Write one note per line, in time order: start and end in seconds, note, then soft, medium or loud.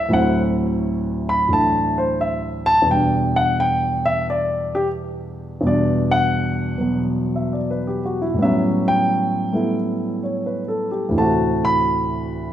0.00 0.12 C3 medium
0.00 0.11 A3 medium
0.00 0.12 E4 medium
0.00 0.10 E5 loud
0.09 2.85 D2 medium
0.09 1.47 A2 medium
0.09 2.86 F#3 medium
0.13 2.87 C4 medium
0.13 2.88 E4 medium
0.13 0.41 F#5 medium
1.29 1.49 B5 medium
1.49 2.86 A2 soft
1.49 2.86 E3 soft
1.49 2.87 A3 soft
1.49 2.88 D4 medium
1.53 1.96 A5 medium
1.98 2.18 C5 medium
2.21 2.65 E5 medium
2.66 2.86 A5 loud
2.82 5.59 E2 medium
2.82 5.61 B2 soft
2.90 5.63 G3 soft
2.90 5.64 D4 medium
2.90 3.34 G5 medium
3.36 3.56 F#5 loud
3.60 4.03 G5 loud
4.06 4.25 E5 medium
4.30 4.73 D5 medium
4.75 4.87 G4 medium
5.61 8.38 E2 medium
5.61 6.76 B2 soft
5.61 8.35 G3 soft
5.66 8.40 D4 medium
5.66 6.10 D5 medium
6.11 6.97 F#5 loud
6.78 8.38 B2 soft
6.78 8.39 F#3 soft
6.78 8.38 B3 medium
7.36 7.56 E5 soft
7.53 7.77 D5 soft
7.71 8.03 B4 medium
7.87 8.17 G4 medium
8.05 8.26 F#4 medium
8.22 8.45 E4 medium
8.34 11.09 A2 medium
8.34 9.51 G3 medium
8.39 9.53 B3 medium
8.39 11.16 C#4 medium
8.39 8.86 E5 medium
8.45 11.18 F#3 medium
8.88 9.74 G5 loud
9.52 11.14 G3 medium
9.52 11.14 A3 soft
9.52 11.15 B3 soft
9.52 11.15 E4 medium
10.23 10.59 C#5 soft
10.46 10.90 B4 medium
10.68 11.04 A4 medium
10.91 11.27 G4 medium
11.09 12.53 D2 medium
11.09 12.53 A2 medium
11.13 12.53 E3 soft
11.13 12.53 A3 soft
11.18 12.53 C3 soft
11.18 12.53 F#4 medium
11.18 11.62 A5 medium
11.65 12.50 B5 loud